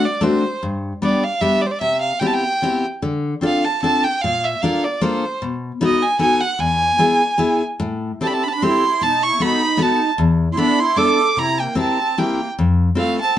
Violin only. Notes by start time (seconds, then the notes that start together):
0.05 D5
0.23 C5
1.04 D5
1.23 F5
1.40 E5
1.61 D5
1.66 C5
1.71 D5
1.80 E5
2.00 F5
2.19 G5
2.26 A5
2.34 G5
3.46 F5
3.64 A5
3.82 A5
4.03 G5
4.21 F5
4.44 E5
4.61 F5
4.84 D5
5.01 C5
5.85 D#5
6.02 G#5
6.20 G#5
6.40 F#5
6.60 G#5
8.23 A5
8.27 B5
8.33 A5
8.43 B5
8.48 A5
8.53 B5
8.62 C6
9.03 A5
9.23 C#6
9.42 B5
9.82 A5
10.53 C6
10.58 B5
10.79 C6
10.97 D6
11.39 A#5
11.60 G5
11.78 A5
12.18 G5
12.98 F5
13.20 A5